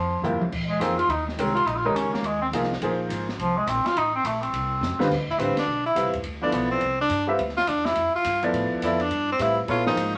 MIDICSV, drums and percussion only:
0, 0, Header, 1, 2, 480
1, 0, Start_track
1, 0, Tempo, 286260
1, 874, Time_signature, 4, 2, 24, 8
1, 17061, End_track
2, 0, Start_track
2, 0, Title_t, "Drums"
2, 399, Note_on_c, 9, 44, 65
2, 566, Note_off_c, 9, 44, 0
2, 696, Note_on_c, 9, 47, 71
2, 864, Note_off_c, 9, 47, 0
2, 876, Note_on_c, 9, 49, 84
2, 877, Note_on_c, 9, 36, 76
2, 1044, Note_off_c, 9, 36, 0
2, 1044, Note_off_c, 9, 49, 0
2, 1358, Note_on_c, 9, 44, 69
2, 1358, Note_on_c, 9, 51, 79
2, 1525, Note_off_c, 9, 44, 0
2, 1525, Note_off_c, 9, 51, 0
2, 1659, Note_on_c, 9, 51, 55
2, 1826, Note_off_c, 9, 51, 0
2, 1838, Note_on_c, 9, 51, 62
2, 2006, Note_off_c, 9, 51, 0
2, 2152, Note_on_c, 9, 38, 43
2, 2320, Note_off_c, 9, 38, 0
2, 2323, Note_on_c, 9, 44, 57
2, 2323, Note_on_c, 9, 51, 91
2, 2490, Note_off_c, 9, 44, 0
2, 2490, Note_off_c, 9, 51, 0
2, 2625, Note_on_c, 9, 51, 49
2, 2792, Note_off_c, 9, 51, 0
2, 2805, Note_on_c, 9, 51, 67
2, 2973, Note_off_c, 9, 51, 0
2, 3286, Note_on_c, 9, 44, 69
2, 3286, Note_on_c, 9, 51, 77
2, 3453, Note_off_c, 9, 44, 0
2, 3453, Note_off_c, 9, 51, 0
2, 3585, Note_on_c, 9, 38, 58
2, 3753, Note_off_c, 9, 38, 0
2, 3757, Note_on_c, 9, 51, 65
2, 3924, Note_off_c, 9, 51, 0
2, 4246, Note_on_c, 9, 44, 66
2, 4246, Note_on_c, 9, 51, 80
2, 4409, Note_on_c, 9, 38, 33
2, 4413, Note_off_c, 9, 44, 0
2, 4413, Note_off_c, 9, 51, 0
2, 4571, Note_off_c, 9, 38, 0
2, 4571, Note_on_c, 9, 38, 52
2, 4722, Note_on_c, 9, 51, 66
2, 4739, Note_off_c, 9, 38, 0
2, 4890, Note_off_c, 9, 51, 0
2, 5202, Note_on_c, 9, 44, 57
2, 5202, Note_on_c, 9, 51, 79
2, 5369, Note_off_c, 9, 44, 0
2, 5369, Note_off_c, 9, 51, 0
2, 5512, Note_on_c, 9, 38, 49
2, 5680, Note_off_c, 9, 38, 0
2, 5692, Note_on_c, 9, 51, 59
2, 5860, Note_off_c, 9, 51, 0
2, 6160, Note_on_c, 9, 44, 72
2, 6160, Note_on_c, 9, 51, 81
2, 6327, Note_off_c, 9, 44, 0
2, 6327, Note_off_c, 9, 51, 0
2, 6467, Note_on_c, 9, 51, 55
2, 6472, Note_on_c, 9, 38, 52
2, 6635, Note_off_c, 9, 51, 0
2, 6640, Note_off_c, 9, 38, 0
2, 6651, Note_on_c, 9, 51, 68
2, 6818, Note_off_c, 9, 51, 0
2, 7120, Note_on_c, 9, 44, 65
2, 7120, Note_on_c, 9, 51, 83
2, 7288, Note_off_c, 9, 44, 0
2, 7288, Note_off_c, 9, 51, 0
2, 7425, Note_on_c, 9, 51, 51
2, 7593, Note_off_c, 9, 51, 0
2, 7606, Note_on_c, 9, 51, 66
2, 7774, Note_off_c, 9, 51, 0
2, 8092, Note_on_c, 9, 44, 72
2, 8097, Note_on_c, 9, 38, 60
2, 8260, Note_off_c, 9, 44, 0
2, 8265, Note_off_c, 9, 38, 0
2, 8387, Note_on_c, 9, 38, 81
2, 8555, Note_off_c, 9, 38, 0
2, 8564, Note_on_c, 9, 36, 70
2, 8576, Note_on_c, 9, 38, 38
2, 8576, Note_on_c, 9, 49, 75
2, 8732, Note_off_c, 9, 36, 0
2, 8744, Note_off_c, 9, 38, 0
2, 8744, Note_off_c, 9, 49, 0
2, 8860, Note_on_c, 9, 36, 56
2, 9028, Note_off_c, 9, 36, 0
2, 9045, Note_on_c, 9, 44, 62
2, 9045, Note_on_c, 9, 51, 68
2, 9213, Note_off_c, 9, 44, 0
2, 9213, Note_off_c, 9, 51, 0
2, 9338, Note_on_c, 9, 51, 72
2, 9343, Note_on_c, 9, 38, 60
2, 9505, Note_off_c, 9, 51, 0
2, 9510, Note_off_c, 9, 38, 0
2, 9995, Note_on_c, 9, 44, 62
2, 9995, Note_on_c, 9, 51, 75
2, 10162, Note_off_c, 9, 44, 0
2, 10162, Note_off_c, 9, 51, 0
2, 10286, Note_on_c, 9, 51, 49
2, 10292, Note_on_c, 9, 36, 59
2, 10454, Note_off_c, 9, 51, 0
2, 10457, Note_on_c, 9, 51, 64
2, 10460, Note_off_c, 9, 36, 0
2, 10624, Note_off_c, 9, 51, 0
2, 10936, Note_on_c, 9, 44, 55
2, 10936, Note_on_c, 9, 51, 77
2, 11104, Note_off_c, 9, 44, 0
2, 11104, Note_off_c, 9, 51, 0
2, 11416, Note_on_c, 9, 51, 54
2, 11584, Note_off_c, 9, 51, 0
2, 11899, Note_on_c, 9, 44, 65
2, 11899, Note_on_c, 9, 51, 72
2, 12067, Note_off_c, 9, 44, 0
2, 12067, Note_off_c, 9, 51, 0
2, 12388, Note_on_c, 9, 51, 60
2, 12554, Note_on_c, 9, 38, 27
2, 12556, Note_off_c, 9, 51, 0
2, 12709, Note_off_c, 9, 38, 0
2, 12709, Note_on_c, 9, 38, 46
2, 12865, Note_on_c, 9, 44, 73
2, 12865, Note_on_c, 9, 51, 73
2, 12877, Note_off_c, 9, 38, 0
2, 13032, Note_off_c, 9, 44, 0
2, 13032, Note_off_c, 9, 51, 0
2, 13167, Note_on_c, 9, 38, 65
2, 13335, Note_off_c, 9, 38, 0
2, 13339, Note_on_c, 9, 51, 64
2, 13507, Note_off_c, 9, 51, 0
2, 13824, Note_on_c, 9, 44, 64
2, 13824, Note_on_c, 9, 51, 83
2, 13992, Note_off_c, 9, 44, 0
2, 13992, Note_off_c, 9, 51, 0
2, 14127, Note_on_c, 9, 51, 52
2, 14295, Note_off_c, 9, 51, 0
2, 14315, Note_on_c, 9, 51, 65
2, 14483, Note_off_c, 9, 51, 0
2, 14791, Note_on_c, 9, 44, 70
2, 14791, Note_on_c, 9, 51, 81
2, 14959, Note_off_c, 9, 44, 0
2, 14959, Note_off_c, 9, 51, 0
2, 15084, Note_on_c, 9, 51, 49
2, 15252, Note_off_c, 9, 51, 0
2, 15270, Note_on_c, 9, 51, 62
2, 15438, Note_off_c, 9, 51, 0
2, 15749, Note_on_c, 9, 44, 63
2, 15749, Note_on_c, 9, 51, 78
2, 15916, Note_off_c, 9, 44, 0
2, 15916, Note_off_c, 9, 51, 0
2, 16233, Note_on_c, 9, 51, 62
2, 16400, Note_off_c, 9, 51, 0
2, 16542, Note_on_c, 9, 38, 58
2, 16710, Note_off_c, 9, 38, 0
2, 16720, Note_on_c, 9, 44, 57
2, 16720, Note_on_c, 9, 51, 82
2, 16888, Note_off_c, 9, 44, 0
2, 16888, Note_off_c, 9, 51, 0
2, 17061, End_track
0, 0, End_of_file